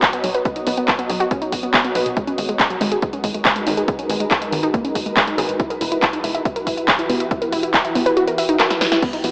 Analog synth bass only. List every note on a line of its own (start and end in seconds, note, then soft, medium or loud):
0.24 0.41 B1 loud
0.67 0.83 B1 medium
1.10 1.26 B1 loud
1.52 1.69 B1 medium
1.95 2.12 B1 medium
2.38 2.55 G#1 loud
2.81 2.98 G#1 loud
3.24 3.41 G#1 medium
3.67 3.83 G#1 medium
4.10 4.26 G#1 medium
4.52 4.69 G#1 loud
4.95 5.12 G#1 medium
5.38 5.55 G#1 loud
5.81 5.98 E1 medium
6.24 6.41 E1 loud
6.67 6.83 E1 medium
7.10 7.26 E1 loud
7.52 7.69 E1 medium
7.95 8.12 E1 loud
9.24 9.31 B1 medium